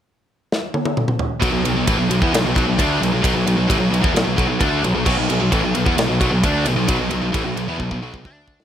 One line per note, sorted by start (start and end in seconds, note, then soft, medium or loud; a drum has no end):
0.52 snare medium
0.74 high tom medium
0.85 high tom medium
0.97 mid tom medium
1.08 mid tom medium
1.19 floor tom loud
1.41 1.51 B1 medium
1.41 1.51 B2 medium
1.41 1.52 F#3 medium
1.41 kick loud
1.41 ride medium
1.52 1.63 B1 medium
1.52 1.64 B2 medium
1.52 1.64 F#3 medium
1.63 1.74 B1 medium
1.63 1.75 B2 medium
1.63 1.75 F#3 medium
1.63 ride medium
1.74 1.85 B1 medium
1.74 1.87 B2 medium
1.74 1.87 F#3 medium
1.87 1.97 A1 loud
1.87 1.98 A2 medium
1.87 1.98 E3 loud
1.87 kick loud
1.87 ride loud
1.98 2.08 B1 medium
1.98 2.09 B2 medium
1.98 2.09 F#3 medium
2.09 2.20 B1 medium
2.09 2.21 B2 medium
2.09 2.21 F#3 medium
2.09 ride medium
2.22 2.32 E2 medium
2.22 2.32 E3 medium
2.22 2.32 B3 loud
2.22 kick loud
2.33 2.43 B1 medium
2.33 2.44 B2 medium
2.33 2.44 F#3 medium
2.33 snare loud
2.33 ride loud
2.44 2.54 B1 medium
2.44 2.53 B2 medium
2.44 2.54 F#3 medium
2.54 2.67 B1 medium
2.54 2.65 B2 medium
2.54 2.66 F#3 medium
2.54 kick loud
2.54 ride medium
2.66 2.78 B1 medium
2.66 2.77 B2 medium
2.66 2.78 F#3 medium
2.78 3.00 D2 loud
2.78 2.99 D3 medium
2.78 3.00 A3 loud
2.78 3.00 D4 loud
2.78 kick loud
2.78 ride medium
3.00 3.11 B1 medium
3.00 3.11 B2 medium
3.00 3.11 F#3 medium
3.00 ride medium
3.12 3.24 B1 medium
3.12 3.21 B2 medium
3.12 3.22 F#3 medium
3.22 3.34 B1 medium
3.22 3.33 B2 medium
3.22 3.34 F#3 loud
3.22 kick loud
3.22 ride medium
3.34 3.46 B1 medium
3.34 3.46 B2 medium
3.34 3.45 F#3 medium
3.47 3.57 B1 medium
3.47 3.56 B2 medium
3.47 3.56 F#3 medium
3.47 ride medium
3.57 3.68 B1 medium
3.57 3.67 B2 medium
3.57 3.69 F#3 medium
3.68 3.78 A1 medium
3.68 3.79 A2 medium
3.68 3.80 E3 loud
3.68 kick loud
3.68 ride medium
3.79 3.90 B1 medium
3.79 3.89 B2 medium
3.79 3.89 F#3 medium
3.90 4.02 B1 medium
3.90 4.01 B2 medium
3.90 4.02 F#3 medium
3.90 ride medium
4.01 4.13 E2 medium
4.01 4.13 E3 loud
4.01 4.13 B3 loud
4.01 kick loud
4.14 4.25 B1 medium
4.14 4.23 B2 medium
4.14 4.24 F#3 medium
4.14 snare loud
4.14 ride medium
4.24 4.37 B1 medium
4.24 4.35 B2 medium
4.24 4.36 F#3 medium
4.36 4.49 B1 loud
4.36 4.47 B2 medium
4.36 4.47 F#3 loud
4.36 kick medium
4.36 ride medium
4.48 4.60 B1 medium
4.48 4.59 B2 medium
4.48 4.60 F#3 medium
4.59 4.82 D2 loud
4.59 4.82 D3 loud
4.59 4.82 A3 loud
4.59 4.83 D4 loud
4.59 kick loud
4.59 ride medium
4.83 4.94 B1 medium
4.83 4.93 B2 medium
4.83 4.94 F#3 medium
4.83 ride medium
4.95 5.05 B1 medium
4.95 5.04 B2 medium
4.95 5.04 F#3 medium
5.05 5.17 B1 medium
5.05 5.16 B2 medium
5.05 5.16 F#3 loud
5.05 kick loud
5.05 crash medium
5.17 5.29 B1 medium
5.17 5.28 B2 medium
5.17 5.28 F#3 medium
5.29 5.40 B1 medium
5.29 5.39 B2 medium
5.29 5.39 F#3 medium
5.29 ride medium
5.40 5.52 B1 medium
5.40 5.51 B2 medium
5.40 5.51 F#3 medium
5.51 5.62 A1 loud
5.51 5.61 A2 loud
5.51 5.62 E3 medium
5.51 kick medium
5.51 ride medium
5.62 5.75 B1 medium
5.62 5.73 B2 medium
5.62 5.74 F#3 medium
5.75 5.86 B1 medium
5.75 5.85 B2 medium
5.75 5.86 F#3 medium
5.75 ride medium
5.85 5.96 E2 medium
5.85 5.96 E3 medium
5.85 5.96 B3 medium
5.85 kick loud
5.97 6.08 B1 medium
5.97 6.06 B2 medium
5.97 6.07 F#3 medium
5.97 snare loud
5.97 ride loud
6.08 6.19 B1 medium
6.08 6.19 B2 medium
6.08 6.19 F#3 medium
6.20 6.31 B1 medium
6.20 6.30 B2 medium
6.20 6.31 F#3 loud
6.20 kick loud
6.20 ride medium
6.32 6.42 B1 medium
6.32 6.43 B2 medium
6.32 6.43 F#3 medium
6.43 6.64 D2 medium
6.43 6.65 D3 medium
6.43 6.65 A3 loud
6.43 6.65 D4 loud
6.43 kick loud
6.43 ride loud
6.66 6.75 B1 medium
6.66 6.75 B2 medium
6.66 6.75 F#3 medium
6.66 ride medium
6.76 6.87 B1 medium
6.76 6.86 B2 medium
6.76 6.87 F#3 medium
6.87 6.99 B1 medium
6.87 6.97 B2 medium
6.87 6.98 F#3 medium
6.87 kick loud
6.87 ride loud
6.98 7.10 B1 medium
6.98 7.08 B2 medium
6.98 7.09 F#3 medium
7.10 7.22 B1 medium
7.10 7.20 B2 medium
7.10 7.21 F#3 medium
7.10 ride medium
7.21 7.33 B1 medium
7.21 7.32 B2 medium
7.21 7.32 F#3 medium
7.32 7.44 A1 loud
7.32 7.43 A2 medium
7.32 7.43 E3 loud
7.32 kick loud
7.32 ride medium
7.45 7.56 B1 medium
7.45 7.55 B2 medium
7.45 7.56 F#3 medium
7.56 7.66 B1 medium
7.56 7.68 B2 medium
7.56 7.68 F#3 medium
7.56 ride medium
7.67 7.78 E2 medium
7.67 7.78 E3 loud
7.67 7.78 B3 loud
7.78 7.90 B1 medium
7.78 7.90 B2 medium
7.78 7.90 F#3 medium
7.78 kick medium
7.91 8.01 B1 medium
7.91 8.01 B2 medium
7.91 8.02 F#3 medium
7.91 kick medium
8.02 8.12 B1 medium
8.02 8.13 B2 medium
8.02 8.13 F#3 medium
8.14 8.24 B1 medium
8.14 8.25 B2 medium
8.14 8.26 F#3 medium
8.14 kick medium
8.25 8.64 D2 medium
8.25 8.64 D3 medium
8.25 8.64 A3 medium
8.25 8.64 D4 loud
8.25 kick medium
8.48 kick loud
8.60 snare medium